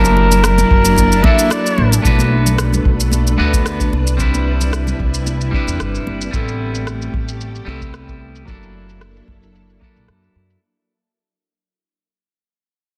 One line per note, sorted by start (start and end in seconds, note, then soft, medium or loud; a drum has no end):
0.00 0.65 F#1 medium
0.00 1.20 F#3 medium
0.00 2.02 F#3 medium
0.00 1.21 A#3 medium
0.00 2.02 A#3 medium
0.00 1.21 D4 medium
0.00 2.02 D4 medium
0.00 1.22 E4 medium
0.00 2.02 E4 medium
0.00 1.26 A#4 loud
0.00 1.22 A5 medium
0.00 2.02 A5 medium
0.00 high conga medium
0.05 shaker soft
0.17 muted conga medium
0.32 low conga medium
0.32 shaker medium
0.44 cross-stick loud
0.44 shaker medium
0.58 muted conga medium
0.58 high conga medium
0.58 low conga medium
0.58 shaker soft
0.71 1.19 F#1 medium
0.71 kick loud
0.85 muted conga medium
0.85 shaker medium
0.96 kick medium
0.96 high conga medium
0.96 shaker medium
1.12 shaker soft
1.22 2.01 F#3 medium
1.22 2.01 A#3 medium
1.22 2.02 D4 medium
1.22 2.03 E4 medium
1.22 1.51 E5 loud
1.22 kick loud
1.22 muted conga medium
1.27 2.03 A4 medium
1.38 high conga medium
1.38 shaker medium
1.50 2.02 D5 medium
1.50 cross-stick loud
1.50 muted conga medium
1.50 shaker medium
1.66 shaker soft
1.78 1.98 A1 medium
1.78 high conga medium
1.92 muted conga medium
1.92 shaker medium
2.02 2.80 B1 medium
2.02 3.34 A3 medium
2.02 3.90 A3 medium
2.02 3.35 B3 medium
2.02 6.29 D4 medium
2.02 3.36 D4 medium
2.02 3.36 F#4 medium
2.02 6.29 B4 medium
2.02 kick loud
2.02 shaker medium
2.07 3.37 B4 medium
2.19 high conga medium
2.19 shaker soft
2.46 low conga medium
2.46 shaker medium
2.58 cross-stick loud
2.58 shaker medium
2.72 high conga medium
2.72 low conga medium
2.72 shaker soft
2.85 3.33 B1 medium
2.85 kick loud
3.00 shaker medium
3.12 high conga loud
3.12 shaker medium
3.27 shaker soft
3.37 3.87 D2 medium
3.37 3.90 A3 medium
3.37 3.90 B3 medium
3.37 3.91 D4 medium
3.37 3.91 F#4 medium
3.37 3.91 B4 medium
3.53 kick loud
3.53 high conga medium
3.53 shaker medium
3.66 cross-stick medium
3.66 shaker soft
3.80 kick medium
3.80 shaker soft
3.93 4.94 C2 medium
3.93 6.31 C3 medium
3.93 6.31 E4 medium
3.93 high conga medium
4.07 shaker medium
4.17 5.49 G3 medium
4.17 5.49 C4 medium
4.17 5.50 D4 medium
4.17 5.51 E4 medium
4.17 kick loud
4.17 shaker medium
4.21 5.51 B4 medium
4.34 high conga medium
4.34 shaker soft
4.61 low conga medium
4.61 shaker medium
4.73 cross-stick loud
4.73 shaker medium
4.87 high conga medium
4.87 low conga medium
4.87 shaker soft
5.00 5.48 C2 medium
5.00 kick medium
5.14 shaker medium
5.26 high conga medium
5.26 shaker medium
5.41 shaker soft
5.51 6.29 G3 medium
5.51 6.30 C4 medium
5.51 6.31 D4 medium
5.51 6.31 E4 medium
5.51 kick medium
5.56 6.32 B4 medium
5.67 5.79 E2 medium
5.67 high conga medium
5.67 shaker medium
5.80 5.99 G1 medium
5.80 cross-stick loud
5.80 shaker soft
5.95 shaker soft
6.06 6.26 G1 medium
6.06 high conga medium
6.21 shaker medium
6.31 7.08 A1 medium
6.31 7.63 G3 medium
6.31 8.46 A3 medium
6.31 7.64 B3 medium
6.31 7.64 C4 medium
6.31 7.65 E4 medium
6.31 8.46 G4 medium
6.31 kick loud
6.31 shaker medium
6.36 7.65 A4 medium
6.48 shaker soft
6.75 shaker medium
6.87 cross-stick medium
6.87 shaker medium
7.02 shaker soft
7.14 7.62 A1 medium
7.14 kick loud
7.28 shaker medium
7.41 shaker medium
7.55 shaker soft
7.65 8.42 C2 medium
7.65 8.44 G3 medium
7.65 8.44 B3 medium
7.65 8.45 C4 medium
7.65 8.45 E4 medium
7.70 8.46 A4 medium
7.82 kick loud
7.82 shaker medium
7.94 cross-stick medium
7.94 shaker soft
8.08 kick medium
8.08 shaker soft
8.35 shaker medium
8.45 9.22 F#1 medium
8.45 9.77 F#3 medium
8.45 10.60 F#3 medium
8.45 9.78 A#3 medium
8.45 10.60 A#3 medium
8.45 10.60 D4 medium
8.45 9.79 D4 medium
8.45 10.60 E4 medium
8.45 9.79 E4 medium
8.45 10.60 A4 medium
8.45 kick loud
8.45 shaker medium
8.50 9.80 A4 medium
8.63 shaker soft
8.89 shaker medium
9.01 cross-stick medium
9.01 shaker soft
9.16 shaker soft
9.28 9.76 F#1 medium
9.28 kick loud
9.43 shaker medium
9.55 shaker soft
9.70 shaker soft
9.80 10.58 F#3 medium
9.80 10.59 A#3 medium
9.80 10.59 D4 medium
9.80 10.60 E4 medium
9.80 kick medium
9.84 10.60 A4 medium
9.96 10.08 A#1 medium
9.96 shaker medium
10.08 10.28 F#2 medium
10.08 cross-stick medium
10.08 shaker soft
10.23 shaker soft
10.35 10.55 F#2 medium
10.50 shaker medium